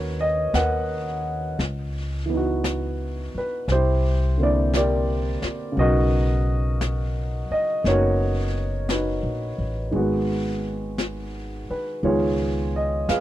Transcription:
Already playing: upright bass D#2, grand piano C#3 G#3 B3 C#4 D#4 F#4 A#4 B4 C#5
0.21 grand piano D#5
0.53 upright bass D#2, grand piano A#4 B4 F#5, brush sweep, snare, hi-hat pedal
1.59 upright bass C#2, brush sweep, snare
2.26 grand piano E3 B3
2.33 grand piano D#4 F#4
2.64 brush sweep, snare, hi-hat pedal
3.35 grand piano B4, muted upright bass stroke
3.68 upright bass C2, brush sweep, snare
3.72 grand piano E4 G4 C5
4.37 grand piano D3 A#3 C4
4.42 grand piano E4 D5
4.73 grand piano G4 A#4 D5, brush sweep, snare, hi-hat pedal
5.42 muted upright bass stroke, snare
5.72 grand piano C#3 F#3
5.77 upright bass B1, grand piano B3 F#4 A#4 D#5, brush sweep
5.83 grand piano D#4
6.81 brush sweep, snare, hi-hat pedal
7.51 grand piano D#5, muted upright bass stroke
7.84 upright bass F#1, grand piano B3 C#4 D#4 C#5, brush sweep, snare
7.88 grand piano F#4 A#4
8.89 grand piano B4, brush sweep, snare, hi-hat pedal
8.93 grand piano D#4 F#4
9.23 upright bass A#1
9.58 upright bass A1
9.91 upright bass G#1, grand piano D#3 G#3 B3, brush sweep
9.96 grand piano F#4
10.98 brush sweep, snare, hi-hat pedal
11.70 grand piano B4, muted upright bass stroke
12.03 upright bass C#2, grand piano D#3 G#3 B3 F4 C#5, brush sweep
12.07 grand piano G#4
12.76 grand piano D#5
13.08 upright bass F2, grand piano G#4 B4 F5, brush sweep, snare, hi-hat pedal

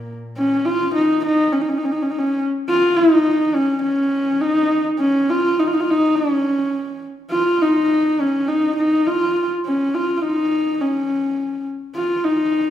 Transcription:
Already playing: cello A#2, horsehead fiddle A#3
0.38 horsehead fiddle C#4
0.65 horsehead fiddle F4
0.95 horsehead fiddle D#4
1.26 horsehead fiddle D#4
1.52 horsehead fiddle C#4
1.61 horsehead fiddle D#4
1.69 horsehead fiddle C#4
1.77 horsehead fiddle D#4
1.85 horsehead fiddle C#4
1.92 horsehead fiddle D#4
2.02 horsehead fiddle C#4
2.11 horsehead fiddle D#4
2.19 horsehead fiddle C#4
2.69 horsehead fiddle F4
2.97 horsehead fiddle D#4
3.54 horsehead fiddle C#4
3.83 horsehead fiddle C#4
4.41 horsehead fiddle D#4
4.99 horsehead fiddle C#4
5.29 horsehead fiddle F4
5.59 horsehead fiddle D#4
5.67 horsehead fiddle F4
5.73 horsehead fiddle D#4
5.80 horsehead fiddle F4
5.90 horsehead fiddle D#4
6.15 horsehead fiddle C#4
7.31 horsehead fiddle F4
7.61 horsehead fiddle D#4
8.21 horsehead fiddle C#4
8.48 horsehead fiddle D#4
8.77 horsehead fiddle D#4
9.07 horsehead fiddle F4
9.66 horsehead fiddle C#4
9.94 horsehead fiddle F4
10.17 horsehead fiddle F4
10.22 horsehead fiddle D#4
10.81 horsehead fiddle C#4
11.95 horsehead fiddle F4
12.24 horsehead fiddle D#4

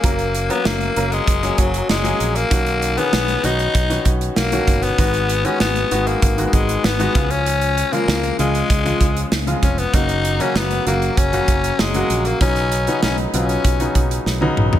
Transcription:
Already playing: tenor saxophone A#3
0.03 fingered electric bass F#1, grand piano F#3 A#3 C#4 A#4, kick, closed hi-hat
0.19 closed hi-hat
0.35 closed hi-hat
0.49 grand piano F#3 A#3 C#4 A#4, tenor saxophone B3, closed hi-hat
0.65 fingered electric bass F#1, tenor saxophone A#3, snare
0.81 closed hi-hat
0.96 fingered electric bass F#1, grand piano F#3 A#3 C#4 A#4, closed hi-hat
1.12 tenor saxophone G#3, closed hi-hat
1.27 fingered electric bass F#1, kick, closed hi-hat
1.43 grand piano F#3 A#3 C#4 G#4, closed hi-hat
1.58 fingered electric bass F#1, tenor saxophone F#3, kick, closed hi-hat
1.74 closed hi-hat
1.89 fingered electric bass F#1, tenor saxophone G#3, snare
2.04 grand piano F#3 A#3 C#4 G#4, closed hi-hat
2.20 fingered electric bass A#1, closed hi-hat
2.35 tenor saxophone A#3, closed hi-hat
2.50 fingered electric bass B1, grand piano B2 D#3 C#4 F#4, kick, closed hi-hat
2.66 closed hi-hat
2.82 closed hi-hat
2.97 grand piano D#3 B3 C#4 G#4, tenor saxophone B3, closed hi-hat
3.13 fingered electric bass B1, snare
3.28 closed hi-hat
3.43 fingered electric bass B1, grand piano D#3 B3 C#4 F#4, tenor saxophone D#4, closed hi-hat
3.59 closed hi-hat
3.75 fingered electric bass B1, kick, closed hi-hat
3.90 grand piano D#3 B3 C#4 F#4, closed hi-hat
4.05 fingered electric bass B1, kick, closed hi-hat
4.21 closed hi-hat
4.36 fingered electric bass B1, tenor saxophone A#3, snare
4.52 grand piano B2 D#3 C#4 F#4, closed hi-hat
4.67 fingered electric bass G1, kick, closed hi-hat
4.83 tenor saxophone B3, closed hi-hat
4.98 fingered electric bass G#1, grand piano D#3 G#3 B3 F#4, kick, closed hi-hat
5.14 closed hi-hat
5.29 closed hi-hat
5.44 grand piano D#3 G#3 B3 F#4, tenor saxophone C#4, closed hi-hat
5.60 fingered electric bass G#1, tenor saxophone B3, snare
5.75 closed hi-hat
5.91 fingered electric bass G#1, grand piano D#3 G#3 B3 F#4, closed hi-hat
6.07 tenor saxophone A#3, closed hi-hat
6.22 fingered electric bass G#1, kick, closed hi-hat
6.37 grand piano D#3 G#3 A#3 F#4, closed hi-hat
6.45 tenor saxophone A#3, grand piano B3
6.53 fingered electric bass G#1, tenor saxophone G#3, kick, closed hi-hat
6.69 closed hi-hat
6.84 fingered electric bass G#1, tenor saxophone B3, snare
6.99 grand piano D#3 G#3 B3 F#4, closed hi-hat
7.15 fingered electric bass C#2, grand piano C#3 F3 G#3 F4, kick, closed hi-hat
7.30 tenor saxophone C#4, closed hi-hat
7.46 closed hi-hat
7.61 closed hi-hat
7.78 closed hi-hat
7.92 grand piano C#3 F3 G#3 F4, tenor saxophone A#3, closed hi-hat
8.08 fingered electric bass C#2, snare
8.23 closed hi-hat
8.39 fingered electric bass C#2, grand piano C#3 F3 G#3 F4, tenor saxophone G#3, closed hi-hat
8.55 closed hi-hat
8.70 fingered electric bass C#2, kick, closed hi-hat
8.85 grand piano C#3 F3 G#3 F4, closed hi-hat
9.01 fingered electric bass C#2, kick, closed hi-hat
9.17 closed hi-hat
9.32 fingered electric bass C#2, snare
9.47 grand piano C#3 F3 G#3 F4, closed hi-hat
9.63 fingered electric bass F1, tenor saxophone C#4, kick, closed hi-hat
9.78 tenor saxophone B3, closed hi-hat
9.93 fingered electric bass F#1, grand piano C#3 F#3 A#3 F#4, tenor saxophone D#4, kick, closed hi-hat
10.09 closed hi-hat
10.25 closed hi-hat
10.40 grand piano C#3 F#3 A#3 F#4, tenor saxophone C#4, closed hi-hat
10.55 fingered electric bass F#1, tenor saxophone B3, snare
10.71 closed hi-hat
10.86 fingered electric bass F#1, grand piano C#3 F#3 A#3 F#4, tenor saxophone A#3, closed hi-hat
11.02 closed hi-hat
11.17 fingered electric bass F#1, tenor saxophone C#4, kick, closed hi-hat
11.33 grand piano C#3 F#3 A#3 F#4, closed hi-hat
11.48 fingered electric bass F#1, kick, closed hi-hat
11.64 closed hi-hat
11.79 fingered electric bass F#1, tenor saxophone G#3, snare
11.94 grand piano C#3 F#3 A#3 F#4, closed hi-hat
12.10 fingered electric bass A#1, closed hi-hat
12.25 tenor saxophone A#3, closed hi-hat
12.41 fingered electric bass B1, grand piano C#3 F#3 B3 D#4, tenor saxophone C#4, kick, closed hi-hat
12.56 closed hi-hat
12.72 closed hi-hat
12.87 grand piano C#3 F#3 B3 D#4, closed hi-hat
13.03 fingered electric bass B1, tenor saxophone C#4, snare
13.18 closed hi-hat
13.33 fingered electric bass B1, grand piano C#3 F#3 B3 F4, tenor saxophone C#4, closed hi-hat
13.49 closed hi-hat
13.64 fingered electric bass B1, kick, closed hi-hat
13.79 grand piano C#3 F#3 B3 D#4, closed hi-hat
13.95 fingered electric bass B1, kick, closed hi-hat
14.11 closed hi-hat
14.26 fingered electric bass B1, snare
14.41 grand piano C#3 F#3 B3 D#4, high tom
14.57 fingered electric bass A#1, mid tom
14.73 floor tom

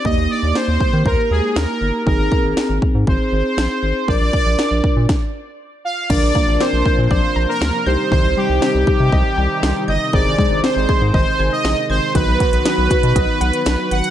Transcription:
0.05 analog synth bass D#2, synth keys A#3 D#4 G4, analog polysynth D#5, kick
0.18 analog synth bass D#2
0.30 analog polysynth D5
0.43 analog synth bass D#2
0.55 analog polysynth C5, snare
0.68 analog synth bass D#2
0.80 kick
0.93 analog synth bass D#3
1.06 analog synth bass D#2, analog polysynth A#4, kick
1.31 analog synth bass D#2, analog polysynth G#4
1.56 analog synth bass D#2, analog polysynth A#4, snare
1.81 analog synth bass G1
2.07 analog synth bass G#1, synth keys C4 D#4 G#4, analog polysynth A#4, kick
2.19 analog synth bass G#1
2.32 kick
2.44 analog synth bass G#1
2.57 snare
2.70 analog synth bass G#1
2.82 kick
2.95 analog synth bass G#2
3.07 analog synth bass G#1, analog polysynth C5, kick
3.33 analog synth bass G#1
3.58 analog synth bass A#1, snare
3.83 analog synth bass G#1
4.08 analog synth bass A#1, synth keys D4 F4 A#4, analog polysynth D5, kick
4.21 analog synth bass A#1
4.33 kick
4.46 analog synth bass A#1
4.59 snare
4.71 analog synth bass A#1
4.84 kick
4.97 analog synth bass A#2
5.09 kick, snare
5.85 analog polysynth F5
6.10 analog synth bass A#1, analog synth pad C3 F3 A#3 D4, synth arpeggio sound D3, synth keys D4 F4 A#4, analog polysynth D5, kick, crash
6.23 analog synth bass A#1
6.35 synth arpeggio sound A#3, kick
6.48 analog synth bass A#1
6.60 synth arpeggio sound C4, analog polysynth C5, snare
6.73 analog synth bass A#1
6.85 synth arpeggio sound F4, kick
6.98 analog synth bass A#2
7.11 analog synth bass A#1, analog polysynth C5, synth arpeggio sound D5, kick
7.36 analog synth bass A#1, synth arpeggio sound A#5
7.49 analog polysynth A#4
7.61 analog synth bass D2, synth arpeggio sound C6, snare
7.86 analog synth bass C2, analog synth pad D#3 G3 D#4, synth keys D#4 G4 C5, analog polysynth C5, synth arpeggio sound G6
8.12 analog synth bass C2, synth arpeggio sound D#3, analog polysynth C5, kick
8.24 analog synth bass C2
8.37 synth arpeggio sound G3, analog polysynth G4
8.50 analog synth bass C2
8.62 synth arpeggio sound C4, snare
8.75 analog synth bass C2
8.87 synth arpeggio sound G4, kick
9.00 analog synth bass C3
9.12 analog synth bass C2, synth arpeggio sound D#5, kick
9.38 analog synth bass C2, synth arpeggio sound G5
9.63 analog synth bass C2, synth arpeggio sound C6, snare
9.88 analog synth bass G1, analog polysynth D#5, synth arpeggio sound G6
10.13 analog synth bass G#1, synth arpeggio sound D#3, analog synth pad G#3, synth keys D#4 G#4 C5, analog polysynth D5, kick
10.26 analog synth bass G#1
10.38 synth arpeggio sound G#3, kick
10.51 analog synth bass G#1
10.64 synth arpeggio sound C4, analog polysynth C5, snare
10.76 analog synth bass G#1
10.89 synth arpeggio sound G#4, kick
11.02 analog synth bass G#2
11.14 analog synth bass G#1, analog polysynth C5, synth arpeggio sound D#5, kick
11.39 analog synth bass G#1, synth arpeggio sound G#5
11.52 analog polysynth D#5
11.64 analog synth bass A#1, synth arpeggio sound C6, snare
11.90 analog synth bass G#1, analog polysynth C5, synth arpeggio sound G#6
12.15 analog synth bass B1, synth arpeggio sound D#3, analog synth pad F#3 B3 F#4, synth keys D#4 F#4 B4, analog polysynth B4, kick, closed hi-hat
12.28 analog synth bass B1
12.40 synth arpeggio sound F#3, analog polysynth B4, kick, closed hi-hat
12.53 analog synth bass B1, closed hi-hat
12.65 synth arpeggio sound B3, snare, closed hi-hat
12.78 analog synth bass B1
12.90 synth arpeggio sound F#4, kick, closed hi-hat
13.03 analog synth bass B2, closed hi-hat
13.16 analog synth bass B1, synth arpeggio sound D#5, kick, closed hi-hat
13.41 analog synth bass B1, synth arpeggio sound F#5, closed hi-hat
13.53 closed hi-hat
13.66 analog synth bass B1, synth arpeggio sound B5, snare, closed hi-hat
13.91 analog synth bass G#1, analog polysynth F#5, synth arpeggio sound F#6, closed hi-hat
14.04 closed hi-hat

